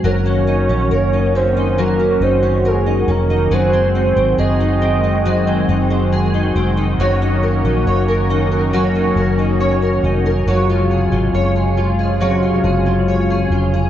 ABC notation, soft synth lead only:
X:1
M:4/4
L:1/8
Q:1/4=69
K:Gblyd
V:1 name="Soft synth lead"
d3 c B c A B | c2 e4- e z | z8 | z8 |]